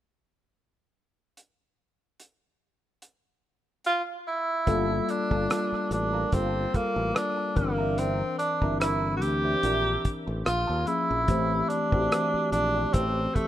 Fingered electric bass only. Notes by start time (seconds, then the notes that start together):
4.67 G1
5.31 G1
5.72 muted fingered electric bass stroke
5.91 A1
6.33 G1
6.96 A1
7.57 G1
8.62 G1
9.22 D2
9.63 A#1
10.28 A1
10.47 A#1
10.69 D#2
11.11 A#1
11.28 A1
11.92 A1
12.34 muted fingered electric bass stroke
12.52 A#1
12.94 A1